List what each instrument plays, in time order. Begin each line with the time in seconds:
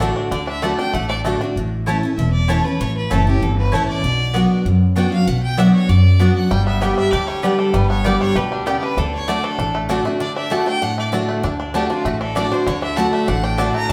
Already playing: upright bass A1, steel-string acoustic guitar A2, five-string banjo D3
0.00 steel-string acoustic guitar D3 A3 D4 F#4, five-string banjo D4, mandolin F#4 D5 A5
0.16 five-string banjo D4
0.31 upright bass D2, five-string banjo D3, steel-string acoustic guitar D3, fiddle D5
0.47 five-string banjo D4, fiddle E5
0.62 steel-string acoustic guitar D3 A3 D4 F#4, mandolin A3 F#4 D5 A5, five-string banjo A3, fiddle F#5
0.78 five-string banjo D4, steel-string acoustic guitar D4 F#4, fiddle G5
0.93 upright bass A1, steel-string acoustic guitar A2, five-string banjo A3, fiddle F#5
1.08 five-string banjo D4, fiddle D5
1.24 steel-string acoustic guitar D3 A3 D4 F#4, mandolin A3 F#4 D5 A5, five-string banjo A3
1.41 five-string banjo D4, steel-string acoustic guitar D4 F#4
1.56 upright bass A1, steel-string acoustic guitar A2
1.86 steel-string acoustic guitar E3 A3 C#4 E4, mandolin A3 E4 C#5 A5
2.03 steel-string acoustic guitar C#4 E4
2.16 upright bass E1, steel-string acoustic guitar E2, fiddle E5
2.33 fiddle D5
2.48 steel-string acoustic guitar E3 A3 C#4 E4, mandolin A3 E4 C#5 A5, fiddle C#5
2.64 steel-string acoustic guitar C#4 E4, fiddle B4
2.80 upright bass A1, steel-string acoustic guitar A2, fiddle C#5
2.97 fiddle B4
3.10 upright bass F#1, steel-string acoustic guitar E3 A3 C#4 E4, mandolin A3 E4 C#5 A5, fiddle A4
3.27 steel-string acoustic guitar C#4 E4, fiddle G4
3.42 upright bass G1, steel-string acoustic guitar E2, fiddle A4
3.58 fiddle B4
3.72 upright bass A1, steel-string acoustic guitar E3 A3 C#4 E4, mandolin A3 E4 C#5 A5, fiddle C#5
3.88 fiddle D5
4.03 upright bass B1, steel-string acoustic guitar B2
4.34 steel-string acoustic guitar F#3 B3 D4 F#4, mandolin B3 F#4 D5 F#5
4.65 upright bass F#2, steel-string acoustic guitar F#2
4.96 steel-string acoustic guitar F#3 B3 D4 F#4, mandolin B3 F#4 D5 F#5, fiddle G5
5.12 steel-string acoustic guitar D4 F#4, fiddle F5
5.27 upright bass B1, steel-string acoustic guitar B2, fiddle F#5
5.43 fiddle G5
5.57 steel-string acoustic guitar F#3 B3 D4 F#4, mandolin B3 F#4 D5 F#5, fiddle E5
5.74 fiddle C#5
5.89 upright bass F#2, steel-string acoustic guitar F#2, fiddle D5
6.19 steel-string acoustic guitar F#3 B3 D4 F#4, mandolin B3 F#4 D5 F#5
6.36 fiddle F#5
6.51 upright bass G1, steel-string acoustic guitar G2, five-string banjo G3, fiddle G5
6.66 five-string banjo B3, fiddle E5
6.81 steel-string acoustic guitar D3 G3 B3 G4, five-string banjo G3, mandolin B3 G4 D5 G5, fiddle C#5
6.96 five-string banjo D4, fiddle E5
7.11 upright bass D2, steel-string acoustic guitar D3, five-string banjo G4, fiddle D5
7.27 five-string banjo G3, fiddle C#5
7.42 steel-string acoustic guitar D3 G3 B3 G4, mandolin B3 G4 D5 G5, five-string banjo G4, fiddle B4
7.59 five-string banjo D4, fiddle A4
7.74 upright bass G1, steel-string acoustic guitar G2, five-string banjo G3, fiddle B4
7.89 five-string banjo B3, fiddle C#5
8.04 steel-string acoustic guitar D3 G3 B3 G4, five-string banjo G3, mandolin B3 G4 D5 G5, fiddle D5
8.20 five-string banjo D4, fiddle C#5
8.35 upright bass D2, steel-string acoustic guitar B2, five-string banjo G4, fiddle B4
8.52 five-string banjo G3, fiddle D4
8.66 steel-string acoustic guitar C#3, mandolin B3 G4 D5 G5, five-string banjo G4, fiddle G4
8.83 five-string banjo D4, fiddle B4
8.97 upright bass D2, steel-string acoustic guitar D3, five-string banjo D4, fiddle A4
9.14 fiddle C#5
9.28 steel-string acoustic guitar D3 A3 D4 F#4, mandolin A3 F#4 D5 A5, five-string banjo A3, fiddle D5
9.44 five-string banjo D4, fiddle A4
9.58 upright bass A1, steel-string acoustic guitar A2, five-string banjo D4
9.75 five-string banjo A3
9.89 steel-string acoustic guitar D3 A3 D4 F#4, mandolin A3 F#4 D5 A5, five-string banjo D4
10.05 five-string banjo A3, steel-string acoustic guitar D4 F#4
10.20 steel-string acoustic guitar D3, five-string banjo D4, fiddle D5
10.36 five-string banjo D4, fiddle E5
10.50 steel-string acoustic guitar D3 A3 D4 F#4, mandolin A3 F#4 D5 A5, five-string banjo A3, fiddle F#5
10.66 five-string banjo D4, steel-string acoustic guitar D4 F#4, fiddle G5
10.82 steel-string acoustic guitar A2, five-string banjo D4, fiddle F#5
10.98 five-string banjo A3, fiddle D5
11.12 steel-string acoustic guitar D3 A3 D4 F#4, mandolin A3 F#4 D5 A5, five-string banjo D4
11.29 five-string banjo A3
11.43 upright bass D2, steel-string acoustic guitar D3, five-string banjo D4
11.60 five-string banjo D4
11.74 steel-string acoustic guitar D3 A3 D4 F#4, mandolin A3 F#4 D5 A5, five-string banjo D4, fiddle G4
11.90 five-string banjo D4, steel-string acoustic guitar D4 F#4, fiddle F4
12.05 upright bass A1, steel-string acoustic guitar A2, five-string banjo A3, fiddle F#4
12.21 five-string banjo D4, fiddle A4
12.35 steel-string acoustic guitar D3 A3 D4 F#4, mandolin A3 F#4 D5 A5, five-string banjo D4, fiddle D5
12.52 five-string banjo D4, steel-string acoustic guitar D4 F#4, fiddle C5
12.66 upright bass D2, five-string banjo D3, steel-string acoustic guitar D3, fiddle C#5
12.82 five-string banjo D4, fiddle E5
12.96 steel-string acoustic guitar D3 A3 D4 F#4, mandolin A3 F#4 D5 A5, five-string banjo D4, fiddle F#5
13.13 five-string banjo A3, fiddle E5
13.27 upright bass A1, steel-string acoustic guitar A2, five-string banjo D4, fiddle F#5
13.43 five-string banjo D4, fiddle G5
13.58 steel-string acoustic guitar D3 A3 D4 F#4, mandolin A3 F#4 D5 A5, five-string banjo D4, fiddle A5
13.74 five-string banjo A3, fiddle A#5
13.89 upright bass D2, five-string banjo D4, fiddle A5